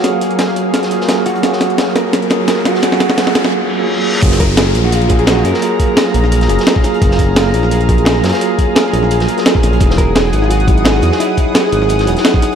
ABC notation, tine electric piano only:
X:1
M:4/4
L:1/16
Q:1/4=172
K:F#
V:1 name="Tine electric piano"
[F,A,Ge]8- [F,A,Ge]2 [F,A,EG]6 | [F,A,Ge]8- [F,A,Ge]2 [F,A,EG]6 | [F,A,Ge]8- [F,A,Ge]2 z [F,A,EG]4- [F,A,EG] | [F,A,EG]8- [F,A,EG]2 [F,A,EG]6 |
[F,A,EG]8- [F,A,EG]2 [F,A,EG]6 | [F,A,EG]8- [F,A,EG]2 [F,A,EG]6 | [F,A,EG]8- [F,A,EG]2 z [F,A,EG]4- [F,A,EG] | [F,D=EG]8- [F,DEG]2 [F,DEG]6 |
[F,=EGd]8- [F,EGd]2 [F,DEG]6 |]